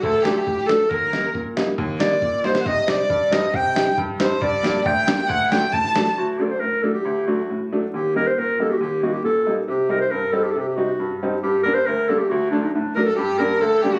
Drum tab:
SD |--o--oo-|--o---o-|--o---oo|--o---o-|
BD |o---o---|o---o---|o---o---|o---o---|

SD |--o---o-|--o---o-|--o--ooo|--------|
BD |o---o---|o---o---|o---o---|--------|

SD |--------|--------|--------|--------|
BD |--------|--------|--------|--------|

SD |--------|--------|--------|--------|
BD |--------|--------|--------|--------|